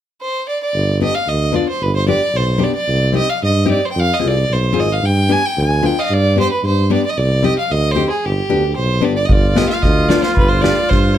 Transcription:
0.22 violin C5
0.49 violin D5
0.63 violin D5
0.74 tuba G1
1.00 nylon-string guitar B3 D4 G4, violin D#5
1.15 violin F5
1.27 tuba D2, violin D#5
1.52 nylon-string guitar B3 D4 F4, violin D5
1.69 violin C5
1.81 tuba G1, violin B4
1.96 violin C5
2.07 nylon-string guitar B3 D4 G4, violin D5
2.33 tuba B1, violin C5
2.58 nylon-string guitar B3 D4 G4
2.64 violin D5
2.75 violin D5
2.88 tuba C2
3.12 nylon-string guitar C4 D#4 G4
3.17 violin D#5
3.30 violin F5
3.42 tuba G2, violin D#5
3.65 nylon-string guitar C4 D#4 G4
3.71 violin D5
3.85 violin C5
3.92 tuba F2, violin G5
4.00 violin F5
4.14 violin D#5
4.19 tuba C2, nylon-string guitar C4 F4 G#4
4.28 violin D5
4.49 tuba B1, violin C5
4.73 tuba G#1, nylon-string guitar C4 F4 G#4
4.80 violin D#5
4.93 violin F5
5.02 tuba G2, violin G5
5.29 nylon-string guitar B3 D4 G4, violin G#5
5.46 violin G5
5.57 tuba D2, violin G#5
5.82 nylon-string guitar B3 D4 F4, violin G5
5.99 violin D#5 F5
6.05 violin D#5
6.10 tuba G2, violin D5
6.36 nylon-string guitar B3 D4 G4, violin C5
6.52 violin B4
6.63 tuba G2, violin C5
6.90 nylon-string guitar B3 D4 G4, violin D5
7.06 violin D5 D#5
7.17 tuba C2, violin D5
7.43 nylon-string guitar C4 D#4 G4, violin D#5
7.59 violin F5
7.71 tuba D2, violin D#5
7.91 nylon-string guitar C4, violin C5
7.96 nylon-string guitar D#4 G4
8.10 violin G#4
8.25 tuba G1, violin G4
8.49 tuba D2, nylon-string guitar B3 D4 G4
8.76 tuba B1, violin C5
9.01 tuba G1, nylon-string guitar B3 D4 G4, violin D5
9.16 violin D5
9.25 trombone F4, violin D#5, kick
9.30 tuba G1, violin D5
9.55 nylon-string guitar B3 D4 G4, violin D#5, snare
9.69 violin F5, snare
9.82 tuba D2, violin D#5, kick, snare
10.09 nylon-string guitar B3 D4 F4, violin D5, snare
10.22 violin C5, snare
10.36 tuba G1, violin B4, kick
10.48 violin C5
10.61 nylon-string guitar B3 D4 G4, violin D5, snare
10.89 tuba G2, violin C5, kick, snare
11.14 violin D5

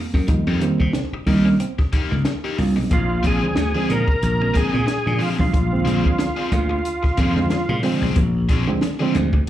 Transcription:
0.13 slap bass F#2, muted overdriven electric guitar stroke, kick, snare
0.27 reed electric piano D#3 G3 A#3 D#4, clean electric guitar F3, muted overdriven electric guitar stroke, kick, closed hi-hat
0.47 slap bass F2, overdriven electric guitar A#3 D#4 G4
0.60 reed electric piano D#3 G3 A#3 C4, muted clean electric guitar stroke, muted overdriven electric guitar stroke, closed hi-hat
0.80 slap bass C3, clean electric guitar A#3, muted overdriven electric guitar stroke, kick
0.93 clean electric guitar C4, snare, closed hi-hat
1.13 muted slap bass stroke, muted overdriven electric guitar stroke
1.26 slap bass C2, reed electric piano D#3 G3 A#3 D#4, overdriven electric guitar A#3 D#4 G4, muted clean electric guitar stroke, kick, open hi-hat
1.45 clean electric guitar C#4, muted overdriven electric guitar stroke
1.60 clean electric guitar C4, closed hi-hat
1.78 muted overdriven electric guitar stroke, kick, snare
1.92 overdriven electric guitar A#3 D#4 G4, muted slap bass stroke, muted clean electric guitar stroke, kick, snare, closed hi-hat
2.11 slap bass C#2, clean electric guitar A#3, muted overdriven electric guitar stroke, snare
2.25 muted overdriven electric guitar stroke, snare, closed hi-hat
2.44 overdriven electric guitar A#3 D#4 G4, reed electric piano D#4 G4
2.57 slap bass C2, clean electric guitar A#3, reed electric piano D4 F4, muted overdriven electric guitar stroke, snare, open hi-hat
2.76 slap bass B1, reed electric piano C4 D#4, muted overdriven electric guitar stroke, snare
2.91 slap bass A#1, clean electric guitar A#3, tonewheel organ F4, kick, closed hi-hat
3.23 slap bass A#1, overdriven electric guitar C4 D4 G#4, muted clean electric guitar stroke, kick, closed hi-hat
3.27 tonewheel organ G#4
3.42 reed electric piano D3 F3 G#3 C4, clean electric guitar G#3
3.56 slap bass D2, muted overdriven electric guitar stroke, snare, closed hi-hat
3.74 reed electric piano D3 F3 G#3 C4, overdriven electric guitar C4 D4 G#4
3.89 slap bass A#2, clean electric guitar A#3, tonewheel organ A#4, muted overdriven electric guitar stroke, snare, closed hi-hat
4.07 muted overdriven electric guitar stroke, kick
4.23 slap bass A#1, closed hi-hat
4.40 reed electric piano D3 F3 G#3 C4, muted overdriven electric guitar stroke
4.54 clean electric guitar A#3, overdriven electric guitar C4 D4 G#4, tonewheel organ G#4, kick, closed hi-hat
4.73 slap bass A#2, muted overdriven electric guitar stroke, snare
4.86 muted overdriven electric guitar stroke, muted clean electric guitar stroke, snare, closed hi-hat
5.06 slap bass A#2, reed electric piano D3 F3 G#3 D4, clean electric guitar G#3, snare
5.19 clean electric guitar F3, overdriven electric guitar C4 D4 G#4, tonewheel organ F4, open hi-hat
5.37 slap bass B1, reed electric piano D3 F3 G#3 D4, tonewheel organ F4, muted overdriven electric guitar stroke, kick, snare
5.53 slap bass A#1, clean electric guitar A#3, kick, closed hi-hat
5.71 reed electric piano C3 F3 G#3 C4
5.78 reed electric piano D3
5.85 slap bass A#1, overdriven electric guitar C4 D4 G#4, muted clean electric guitar stroke, closed hi-hat
6.04 clean electric guitar G#3, kick
6.18 muted overdriven electric guitar stroke, snare, closed hi-hat
6.36 overdriven electric guitar C4 D4 G#4
6.51 slap bass D2, clean electric guitar A#3, muted overdriven electric guitar stroke, kick, closed hi-hat
6.69 muted overdriven electric guitar stroke
6.85 closed hi-hat
7.03 muted overdriven electric guitar stroke, muted slap bass stroke, kick, snare
7.17 slap bass F2, clean electric guitar A#3, overdriven electric guitar C4 D4 G#4, kick, snare, closed hi-hat
7.35 reed electric piano D3 F3 G#3 C4, muted overdriven electric guitar stroke, snare
7.50 muted clean electric guitar stroke, muted overdriven electric guitar stroke, snare, closed hi-hat
7.69 slap bass A#2, clean electric guitar G#3, muted overdriven electric guitar stroke
7.83 reed electric piano D3 F3 G#3 C4, clean electric guitar F3, overdriven electric guitar C4 D4 G#4, snare, open hi-hat
8.01 slap bass B1, overdriven electric guitar C4 D4 G#4, snare
8.16 slap bass A#1, clean electric guitar A#3, kick, closed hi-hat
8.49 slap bass A#1, overdriven electric guitar C4 D4 G#4, muted clean electric guitar stroke, kick, closed hi-hat
8.67 reed electric piano D3 F3 G#3 C4, clean electric guitar G#3
8.81 muted overdriven electric guitar stroke, snare, closed hi-hat
8.99 reed electric piano D3 F3 G#3 C4, overdriven electric guitar C4 D4 G#4
9.15 slap bass D2, clean electric guitar A#3, muted overdriven electric guitar stroke, snare, closed hi-hat
9.33 muted overdriven electric guitar stroke, kick

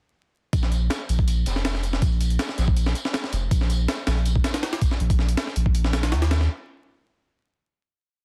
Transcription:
0.53 sub bass A#1, kick, closed hi-hat, tambourine
0.62 snare
0.72 closed hi-hat, tambourine
0.90 snare, closed hi-hat, tambourine
1.09 sub bass A#1, closed hi-hat, tambourine
1.19 kick, closed hi-hat
1.27 closed hi-hat, tambourine
1.46 sub bass F1, snare, closed hi-hat, tambourine
1.56 snare, closed hi-hat
1.65 snare, closed hi-hat, tambourine
1.75 snare
1.83 closed hi-hat, tambourine
1.93 snare
2.02 sub bass A#1, kick, closed hi-hat, tambourine
2.12 closed hi-hat
2.21 closed hi-hat, tambourine
2.30 closed hi-hat
2.39 snare, closed hi-hat, tambourine
2.49 snare
2.58 sub bass A#1, snare, closed hi-hat, tambourine
2.68 kick
2.76 closed hi-hat, tambourine
2.86 snare, closed hi-hat
2.95 closed hi-hat, tambourine
3.05 snare
3.13 snare, closed hi-hat, tambourine
3.24 snare
3.33 sub bass F1, closed hi-hat, tambourine
3.51 sub bass A#1, kick, closed hi-hat, tambourine
3.61 snare
3.70 closed hi-hat, tambourine
3.88 snare, closed hi-hat, tambourine
4.07 sub bass A#1, snare, closed hi-hat, tambourine
4.17 closed hi-hat
4.25 closed hi-hat, tambourine
4.35 kick
4.44 snare, closed hi-hat, tambourine
4.54 snare, closed hi-hat
4.63 snare, closed hi-hat, tambourine
4.73 snare, closed hi-hat
4.81 kick, closed hi-hat, tambourine
4.91 snare
5.00 sub bass A#1, closed hi-hat
5.10 kick, closed hi-hat
5.19 snare
5.29 closed hi-hat
5.37 snare, closed hi-hat
5.47 snare
5.56 sub bass A#1, closed hi-hat
5.66 kick
5.75 closed hi-hat
5.84 snare
5.93 snare, closed hi-hat
6.03 snare, closed hi-hat
6.12 sub bass D#2, snare, closed hi-hat
6.22 snare, closed hi-hat
6.31 snare, closed hi-hat
6.41 snare

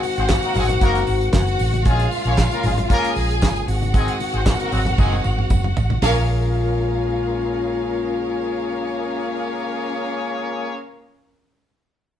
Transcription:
Already playing: french horn section D#3 G#3 C4 F#4, violin section F#4 F#5
0.03 open hi-hat, tambourine, muted conga
0.16 fingered electric bass G#1, horn section C4 F#4 G#4 C5, closed hi-hat
0.29 kick, snare, clap, tambourine, high conga
0.42 horn section A#3 D#4 F#4 A#4, closed hi-hat
0.55 fingered electric bass G#1, horn section G#3 C4 D#4 G#4, open hi-hat, tambourine, low conga
0.69 closed hi-hat, tambourine, low conga
0.81 fingered electric bass F#1, horn section A#3 D#4 F#4 A#4, kick, closed hi-hat, tambourine, muted conga
0.95 closed hi-hat, tambourine
1.07 fingered electric bass G#1, open hi-hat, tambourine
1.21 closed hi-hat
1.33 fingered electric bass F#1, violin section F#4 F#5, kick, snare, clap, tambourine, high conga
1.47 closed hi-hat
1.59 fingered electric bass A1, open hi-hat, tambourine
1.73 closed hi-hat, tambourine, high conga
1.85 fingered electric bass A#1, french horn section C#3 A#3 F4, horn section G#3 C#4 F4 G#4, violin section F4 F5, kick, closed hi-hat, tambourine, muted conga
2.00 closed hi-hat
2.11 open hi-hat, tambourine, muted conga
2.25 fingered electric bass A#1, horn section C#4 G#4 A#4 C#5, closed hi-hat
2.38 kick, snare, clap, tambourine, high conga
2.51 horn section A#3 C#4 F4 A#4, closed hi-hat
2.63 fingered electric bass G#1, horn section G#3 C#4 F4 G#4, open hi-hat, tambourine, low conga
2.78 closed hi-hat, low conga
2.90 horn section A#3 C#4 F4 A#4, violin section G#4 G#5, kick, closed hi-hat, tambourine, muted conga
3.04 closed hi-hat, tambourine
3.16 fingered electric bass A#1, open hi-hat, tambourine
3.31 closed hi-hat
3.41 fingered electric bass G#1, kick, snare, clap, tambourine, high conga
3.56 closed hi-hat
3.66 fingered electric bass G#1, french horn section D#3 C4 F#4, violin section F#4 F#5, open hi-hat, tambourine
3.82 closed hi-hat, tambourine, high conga
3.94 horn section G#3 C4 D#4 G#4, kick, closed hi-hat, tambourine
4.08 closed hi-hat
4.20 open hi-hat, tambourine, muted conga
4.33 fingered electric bass G#1, horn section C4 F#4 G#4 C5, closed hi-hat
4.46 kick, snare, clap, tambourine, high conga
4.60 horn section A#3 D#4 F#4 A#4, closed hi-hat
4.72 fingered electric bass G#1, horn section F#3 C4 D#4 F#4, open hi-hat, tambourine, low conga
4.85 closed hi-hat, tambourine, low conga
4.98 fingered electric bass F#1, horn section G#3 C4 D#4 G#4, kick, high tom, tambourine, muted conga
5.13 high tom, tambourine
5.24 fingered electric bass G#1, mid tom, tambourine
5.39 mid tom
5.50 fingered electric bass F#1, kick, mid tom, tambourine, high conga
5.64 mid tom
5.77 fingered electric bass A1, floor tom, tambourine
5.90 floor tom, high conga
6.02 fingered electric bass A#1, french horn section C#3 G#3 A#3 F4, horn section A#3 C#4 G#4 C#5, violin section C#4 A#4 F5, snare, floor tom, open hi-hat, tambourine, muted conga

